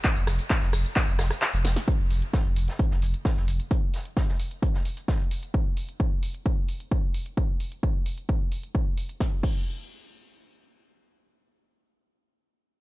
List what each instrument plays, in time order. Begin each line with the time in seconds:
0.04 kick, clap, closed hi-hat, tambourine
0.16 sub bass F1, tambourine
0.27 sub bass F1, cross-stick, snare, closed hi-hat, open hi-hat, ride, tambourine
0.39 closed hi-hat, tambourine
0.50 kick, snare, clap, closed hi-hat, tambourine
0.62 sub bass F1, snare, tambourine
0.72 sub bass F1, cross-stick, closed hi-hat, open hi-hat, ride, tambourine
0.85 closed hi-hat, tambourine
0.96 kick, snare, clap, closed hi-hat, tambourine
1.08 sub bass F1, tambourine
1.19 sub bass F1, cross-stick, snare, closed hi-hat, open hi-hat, ride, tambourine
1.30 cross-stick, snare, closed hi-hat, tambourine
1.42 snare, clap, closed hi-hat, tambourine
1.53 sub bass F1, snare, tambourine
1.65 sub bass F1, snare, closed hi-hat, open hi-hat, ride, tambourine
1.76 snare, closed hi-hat, tambourine
1.88 kick, closed hi-hat
1.99 sub bass F1
2.11 sub bass F1, closed hi-hat, open hi-hat
2.22 closed hi-hat
2.33 kick, snare, closed hi-hat
2.45 sub bass F1
2.56 sub bass F1, closed hi-hat, open hi-hat
2.68 snare, closed hi-hat
2.79 kick, closed hi-hat
2.91 sub bass F1, snare
3.02 sub bass F1, closed hi-hat, open hi-hat
3.14 closed hi-hat
3.25 kick, snare, closed hi-hat
3.37 sub bass F1, snare
3.48 sub bass F1, closed hi-hat, open hi-hat
3.60 closed hi-hat
3.71 kick, closed hi-hat
3.94 snare, closed hi-hat, open hi-hat
4.05 closed hi-hat
4.17 kick, snare, closed hi-hat
4.28 snare
4.39 closed hi-hat, open hi-hat
4.51 closed hi-hat
4.62 kick, closed hi-hat
4.74 snare
4.85 closed hi-hat, open hi-hat
4.97 closed hi-hat
5.08 kick, snare, closed hi-hat
5.20 closed hi-hat
5.31 closed hi-hat, open hi-hat
5.43 closed hi-hat
5.54 kick, closed hi-hat
5.77 open hi-hat
5.89 closed hi-hat
6.00 kick, closed hi-hat
6.23 open hi-hat
6.34 closed hi-hat
6.46 kick, closed hi-hat
6.69 open hi-hat
6.80 closed hi-hat
6.91 kick, closed hi-hat
7.14 open hi-hat
7.26 closed hi-hat
7.37 kick, closed hi-hat
7.60 open hi-hat
7.72 closed hi-hat
7.83 kick, closed hi-hat
8.06 open hi-hat
8.18 closed hi-hat
8.29 kick, closed hi-hat
8.52 open hi-hat
8.63 closed hi-hat
8.75 kick, closed hi-hat
8.98 open hi-hat
9.09 closed hi-hat
9.20 kick, snare
9.43 kick, crash